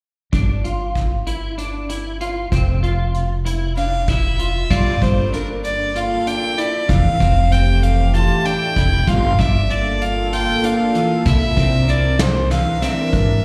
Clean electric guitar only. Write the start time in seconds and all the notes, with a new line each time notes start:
0.32 D4
0.64 F4
1.27 E4
1.58 D4
1.89 E4
2.21 F4
2.52 C4
2.83 F4
3.45 E4
3.77 D4
4.08 E4
4.39 F4
4.71 F4
5.02 D4
5.33 D4
5.95 F4
6.27 D4
6.58 E4
6.89 E3
7.20 C4
7.51 C4
8.14 F4
8.45 D4
8.76 E4
9.08 F4
9.39 D4
9.70 D4
10.33 F4
10.63 D4
10.95 E3
11.26 E4
11.57 C4
11.88 C4
12.51 E3
12.82 C4
13.12 D4